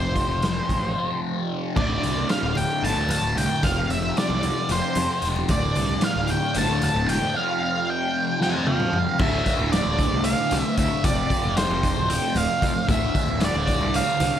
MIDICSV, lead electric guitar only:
0, 0, Header, 1, 2, 480
1, 0, Start_track
1, 0, Key_signature, -1, "minor"
1, 0, Tempo, 533333
1, 1596, Time_signature, 7, 3, 24, 8
1, 5907, Tempo, 526778
1, 13044, End_track
2, 0, Start_track
2, 0, Title_t, "Lead electric guitar"
2, 0, Program_c, 0, 29
2, 0, Note_on_c, 0, 72, 80
2, 1082, Note_off_c, 0, 72, 0
2, 1592, Note_on_c, 0, 74, 88
2, 2041, Note_off_c, 0, 74, 0
2, 2077, Note_on_c, 0, 77, 84
2, 2300, Note_off_c, 0, 77, 0
2, 2313, Note_on_c, 0, 79, 79
2, 2556, Note_off_c, 0, 79, 0
2, 2559, Note_on_c, 0, 81, 93
2, 2788, Note_off_c, 0, 81, 0
2, 2798, Note_on_c, 0, 81, 81
2, 3039, Note_off_c, 0, 81, 0
2, 3043, Note_on_c, 0, 79, 86
2, 3274, Note_on_c, 0, 77, 90
2, 3287, Note_off_c, 0, 79, 0
2, 3499, Note_off_c, 0, 77, 0
2, 3519, Note_on_c, 0, 76, 80
2, 3741, Note_off_c, 0, 76, 0
2, 3762, Note_on_c, 0, 74, 81
2, 4205, Note_off_c, 0, 74, 0
2, 4249, Note_on_c, 0, 72, 77
2, 4744, Note_off_c, 0, 72, 0
2, 4958, Note_on_c, 0, 74, 85
2, 5437, Note_off_c, 0, 74, 0
2, 5441, Note_on_c, 0, 77, 92
2, 5671, Note_on_c, 0, 79, 84
2, 5681, Note_off_c, 0, 77, 0
2, 5915, Note_off_c, 0, 79, 0
2, 5923, Note_on_c, 0, 81, 95
2, 6140, Note_off_c, 0, 81, 0
2, 6162, Note_on_c, 0, 81, 89
2, 6388, Note_off_c, 0, 81, 0
2, 6392, Note_on_c, 0, 79, 80
2, 6614, Note_off_c, 0, 79, 0
2, 6638, Note_on_c, 0, 77, 87
2, 6868, Note_off_c, 0, 77, 0
2, 6879, Note_on_c, 0, 77, 85
2, 7123, Note_off_c, 0, 77, 0
2, 7125, Note_on_c, 0, 79, 83
2, 7566, Note_off_c, 0, 79, 0
2, 7603, Note_on_c, 0, 79, 107
2, 7607, Note_on_c, 0, 81, 82
2, 7819, Note_off_c, 0, 79, 0
2, 7823, Note_on_c, 0, 77, 99
2, 8104, Note_off_c, 0, 81, 0
2, 8307, Note_off_c, 0, 77, 0
2, 8311, Note_on_c, 0, 76, 99
2, 8758, Note_off_c, 0, 76, 0
2, 8784, Note_on_c, 0, 74, 87
2, 9234, Note_off_c, 0, 74, 0
2, 9264, Note_on_c, 0, 77, 91
2, 9592, Note_off_c, 0, 77, 0
2, 9592, Note_on_c, 0, 76, 91
2, 9714, Note_off_c, 0, 76, 0
2, 9757, Note_on_c, 0, 76, 85
2, 9977, Note_off_c, 0, 76, 0
2, 9992, Note_on_c, 0, 74, 91
2, 10437, Note_off_c, 0, 74, 0
2, 10473, Note_on_c, 0, 72, 97
2, 10950, Note_on_c, 0, 79, 100
2, 10965, Note_off_c, 0, 72, 0
2, 11173, Note_off_c, 0, 79, 0
2, 11204, Note_on_c, 0, 77, 98
2, 11643, Note_off_c, 0, 77, 0
2, 11687, Note_on_c, 0, 76, 106
2, 12171, Note_off_c, 0, 76, 0
2, 12177, Note_on_c, 0, 74, 90
2, 12646, Note_on_c, 0, 77, 102
2, 12654, Note_off_c, 0, 74, 0
2, 13044, Note_off_c, 0, 77, 0
2, 13044, End_track
0, 0, End_of_file